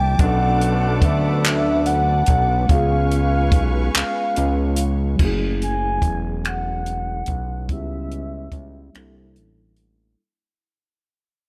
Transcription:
0.00 0.16 C2 medium
0.00 0.14 G3 medium
0.00 0.15 A#3 medium
0.00 0.17 A#3 medium
0.00 0.16 D4 medium
0.00 0.17 E4 medium
0.00 0.18 A4 medium
0.00 0.15 E5 medium
0.00 0.22 G5 loud
0.00 2.65 A5 medium
0.00 2.65 D6 medium
0.16 2.23 B2 medium
0.16 2.24 D3 medium
0.16 2.63 F#3 medium
0.16 2.23 A3 medium
0.16 2.65 B3 soft
0.16 2.24 D4 medium
0.16 kick loud
0.16 closed hi-hat medium
0.20 1.04 B1 loud
0.20 2.66 C#4 medium
0.20 2.67 D4 medium
0.20 2.67 B4 medium
0.20 2.67 F#5 medium
0.20 1.07 F#5 loud
0.25 2.68 A4 medium
0.61 closed hi-hat medium
1.02 2.23 D2 loud
1.02 1.88 E5 loud
1.02 kick loud
1.02 closed hi-hat medium
1.45 clap loud
1.45 closed hi-hat medium
1.86 2.72 F#5 loud
1.86 closed hi-hat medium
2.26 2.66 B1 loud
2.26 kick medium
2.26 closed hi-hat medium
2.66 5.13 G#3 medium
2.66 5.15 B3 medium
2.66 5.16 B4 medium
2.66 5.16 F5 medium
2.66 5.16 G#5 medium
2.66 5.16 C#6 medium
2.66 kick loud
2.66 closed hi-hat medium
2.70 3.54 C#2 loud
2.70 5.16 C#4 medium
2.70 5.17 F4 medium
2.70 3.95 F5 loud
2.75 5.18 G#4 medium
3.11 closed hi-hat soft
3.52 3.90 B1 loud
3.52 kick loud
3.52 closed hi-hat medium
3.95 4.04 C#2 soft
3.95 4.85 F5 medium
3.95 clap loud
3.95 closed hi-hat medium
4.36 5.16 C#2 medium
4.36 closed hi-hat soft
4.76 closed hi-hat medium
5.16 7.63 F#3 medium
5.16 7.64 A3 medium
5.16 kick loud
5.16 crash medium
5.20 5.99 F#1 medium
5.20 7.66 C#4 medium
5.20 7.67 E4 medium
5.25 7.68 G#4 medium
5.62 6.41 G#5 loud
5.62 closed hi-hat soft
6.02 7.24 E1 loud
6.02 kick medium
6.02 closed hi-hat medium
6.44 7.66 F#5 medium
6.44 finger snap medium
6.44 closed hi-hat medium
6.86 closed hi-hat soft
7.26 7.71 B1 medium
7.26 kick medium
7.26 closed hi-hat medium
7.68 8.49 C#2 loud
7.68 8.92 G3 soft
7.68 8.94 B3 soft
7.68 8.94 C#4 medium
7.68 8.95 E4 soft
7.68 9.33 E5 medium
7.68 kick medium
7.68 closed hi-hat medium
7.72 8.96 G4 soft
8.11 closed hi-hat soft
8.52 8.90 C#2 medium
8.52 kick medium
8.52 closed hi-hat medium
8.93 9.39 C2 medium
8.93 10.18 G3 medium
8.93 10.19 A#3 medium
8.93 10.20 D4 medium
8.93 10.20 E4 medium
8.93 finger snap medium
8.93 closed hi-hat medium
8.97 10.21 A4 medium
9.36 10.16 A1 medium
9.36 closed hi-hat soft
9.76 closed hi-hat medium

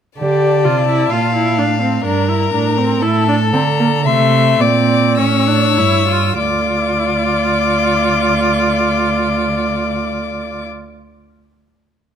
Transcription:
0.19 0.66 D3 medium
0.19 0.66 G4 medium
0.19 1.12 D5 medium
0.19 2.01 A5 medium
0.65 1.10 C3 medium
0.65 0.88 F4 medium
0.88 1.14 E4 medium
1.10 1.60 A#2 medium
1.10 1.35 F4 medium
1.10 2.05 F5 medium
1.35 1.60 E4 medium
1.59 2.04 A2 medium
1.59 1.82 D4 medium
1.82 2.05 C4 medium
2.05 2.52 G2 medium
2.05 2.30 D4 medium
2.05 3.03 A#4 medium
2.05 3.04 A#5 medium
2.29 2.53 E4 medium
2.53 3.01 A2 medium
2.53 2.79 D4 medium
2.78 3.04 C4 medium
3.02 3.55 A2 medium
3.02 3.28 E4 medium
3.02 4.05 A4 medium
3.02 3.53 A5 medium
3.28 3.36 D4 medium
3.53 4.07 D3 medium
3.53 3.61 C4 medium
3.53 4.07 A#5 medium
3.79 3.87 A#3 medium
4.05 4.60 C3 medium
4.05 4.62 A3 medium
4.05 4.62 E5 medium
4.05 4.62 C6 medium
4.60 5.19 A#2 medium
4.60 5.19 C4 medium
4.60 5.20 D5 medium
4.60 5.17 D6 medium
5.18 5.78 A2 medium
5.18 5.49 C#4 medium
5.18 6.38 C#5 medium
5.18 6.37 E6 medium
5.47 5.79 D4 medium
5.77 6.38 G2 medium
5.77 6.08 E4 medium
6.08 6.39 F4 medium
6.39 10.64 D2 medium
6.39 10.65 F4 medium
6.39 10.64 D5 medium
6.39 10.65 D6 medium

